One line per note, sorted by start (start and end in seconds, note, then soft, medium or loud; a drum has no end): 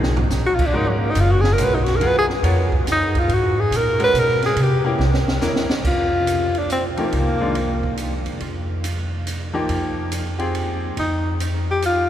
0.00 0.29 B1 medium
0.00 0.13 F3 medium
0.00 0.13 A#3 medium
0.00 0.13 D#4 medium
0.00 0.13 G#4 medium
0.00 snare medium
0.17 floor tom medium
0.30 0.72 A#1 medium
0.30 snare medium
0.30 hi-hat pedal medium
0.46 0.56 F#4 medium
0.55 0.68 F4 loud
0.59 kick medium
0.59 crash medium
0.67 0.79 D4 medium
0.73 1.14 G#1 medium
0.73 1.38 G#3 medium
0.73 1.38 C#4 medium
0.73 1.38 F#4 medium
0.73 1.38 A#4 medium
0.77 0.90 D#4 loud
0.88 0.99 F#3 medium
0.98 1.12 A#3 medium
1.11 1.22 D#4 medium
1.15 1.57 F#1 medium
1.15 hi-hat pedal medium
1.15 ride medium
1.21 1.33 F4 loud
1.32 1.42 F#4 medium
1.41 1.55 G#4 loud
1.41 snare medium
1.54 1.65 A#4 medium
1.58 1.99 B1 medium
1.58 1.83 G#3 medium
1.58 1.83 C#4 medium
1.58 1.84 F#4 medium
1.58 1.84 A#4 medium
1.58 hi-hat pedal medium
1.58 ride medium
1.64 1.76 B4 loud
1.75 1.85 D#4 medium
1.84 1.98 F#4 loud
1.84 snare soft
1.84 ride soft
1.96 2.26 D#2 loud
1.96 2.08 A#4 loud
2.01 2.26 F#3 medium
2.01 2.26 B3 medium
2.01 2.26 F4 medium
2.01 2.27 G#4 medium
2.01 ride medium
2.07 2.18 B4 loud
2.19 2.26 G#4 loud
2.28 muted upright bass stroke soft
2.28 snare soft
2.43 2.84 F2 medium
2.43 2.69 B3 medium
2.43 2.69 F4 medium
2.43 2.69 A#4 medium
2.43 2.69 C#5 medium
2.43 ride medium
2.72 kick medium
2.86 3.27 F#2 medium
2.86 snare soft
2.86 hi-hat pedal medium
2.86 ride medium
2.92 3.20 D#4 medium
3.15 3.35 F4 medium
3.15 kick medium
3.15 ride soft
3.28 3.70 G#2 medium
3.28 ride medium
3.34 3.62 F#4 medium
3.60 3.78 G#4 loud
3.71 4.13 A#2 medium
3.71 hi-hat pedal medium
3.71 ride medium
3.77 4.02 A#4 loud
3.99 4.54 G#3 medium
3.99 4.54 C#4 medium
3.99 4.54 F#4 medium
3.99 4.54 A#4 medium
3.99 ride medium
4.04 4.21 B4 loud
4.14 4.55 B2 medium
4.14 hi-hat pedal medium
4.14 ride medium
4.19 4.45 A#4 loud
4.42 4.64 G#4 medium
4.42 snare soft
4.42 ride medium
4.56 4.98 C3 medium
4.56 ride medium
4.62 5.02 G4 medium
4.84 4.98 A#3 medium
4.84 4.98 C#4 medium
4.84 4.98 E4 medium
4.84 4.99 G4 medium
4.99 5.40 C2 medium
4.99 snare medium
5.14 snare medium
5.28 snare medium
5.41 5.67 E2 medium
5.41 5.67 A#3 medium
5.41 5.67 C#4 medium
5.41 5.67 E4 medium
5.41 5.67 A#4 medium
5.41 snare medium
5.41 hi-hat pedal medium
5.56 snare medium
5.69 muted upright bass stroke soft
5.69 snare medium
5.85 7.09 F2 medium
5.85 6.60 F4 loud
5.85 kick medium
5.85 crash medium
6.27 hi-hat pedal medium
6.27 ride medium
6.55 6.72 D4 medium
6.55 ride soft
6.70 6.84 C4 medium
6.70 hi-hat pedal medium
6.70 ride medium
6.97 7.52 F3 medium
6.97 7.52 A#3 medium
6.97 8.23 A#3 medium
6.97 7.53 D#4 medium
6.97 7.53 G4 medium
6.97 ride soft
7.12 8.22 C2 medium
7.12 ride medium
7.40 7.54 D#3 medium
7.40 7.54 G#3 medium
7.40 7.54 D4 medium
7.40 7.54 F4 medium
7.55 ride medium
7.83 kick medium
7.97 hi-hat pedal medium
7.97 ride medium
8.26 8.40 E2 medium
8.26 ride soft
8.40 9.65 F2 medium
8.40 ride medium
8.84 hi-hat pedal medium
8.84 ride medium
9.27 hi-hat pedal medium
9.27 ride medium
9.54 10.08 F3 medium
9.54 10.09 A#3 medium
9.54 10.09 D#4 medium
9.54 10.09 G4 medium
9.69 10.93 F2 medium
9.69 ride medium
10.12 hi-hat pedal medium
10.12 ride medium
10.39 10.94 C4 medium
10.39 10.94 F4 medium
10.39 10.94 G4 medium
10.39 10.94 G#4 medium
10.39 ride soft
10.55 ride medium
10.97 12.06 F2 medium
10.97 11.38 D#4 medium
10.97 ride medium
11.40 hi-hat pedal medium
11.40 ride medium
11.71 11.83 G4 medium
11.82 12.09 F4 medium
11.82 hi-hat pedal medium
11.82 ride medium